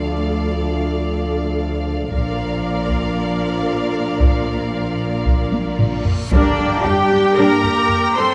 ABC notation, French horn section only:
X:1
M:4/4
L:1/8
Q:1/4=115
K:Bblyd
V:1 name="French horn section"
[DF]8 | [DF]8- | [DF]6- [DF] z | [K:Gm] D,2 G,2 B,3 C |]